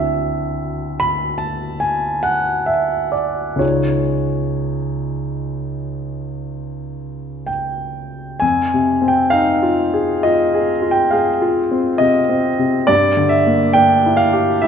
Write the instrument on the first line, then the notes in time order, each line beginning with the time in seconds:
grand piano
Already playing: D2 C4 D4 E4 F#4 E5
1.00 B5
1.38 A5
1.80 G#5
2.23 F#5
2.66 E5
3.12 D5
3.56 C#2 C#4 D#4 F4 C#5
3.61 G#4
7.47 G5
8.40 F2 G#5
8.74 C3
9.02 C4
9.08 G5
9.30 D#4 F5
9.62 F4
9.94 G#4
10.23 F4 D#5
10.54 G#4
10.82 F4
10.91 G5
11.11 G#4 F5
11.42 F4
11.71 C4
11.98 C3 D#5
12.29 C4
12.59 C3
12.87 G2 D5
13.17 D3
13.29 E5
13.46 A#3
13.73 D4 G5
14.06 E4
14.17 F5
14.33 G4
14.62 E4 E5